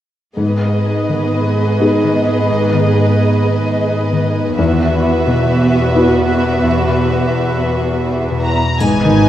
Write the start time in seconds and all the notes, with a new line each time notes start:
0.36 G#2 B3 G#4 B4 D#5
0.62 D#4
0.86 G#4
1.09 D#3 B4
1.34 D#5
1.57 B4
1.80 B3 D#4 G#4
2.03 D#3
2.27 D#4
2.50 G#2
2.73 D#3
2.96 G#4
3.19 B4
3.43 D#5
3.65 B4
3.88 D#4
4.12 D#3
4.35 D#4
4.57 E2 B3 F#4 B4 E5
4.80 E4
5.03 F#4
5.26 B2 B4
5.50 E5
5.72 B4
5.94 B3 E4 F#4
6.17 B2
6.40 E4
6.64 E2
6.87 B2
7.11 F#4
7.34 B4
7.58 E5
7.81 B4
8.05 E4
8.30 B2
8.43 A#5
8.56 E4
8.80 G#1 G#2 B3 D#4 B4 D#5 G#5, triangle
9.03 D#3 B4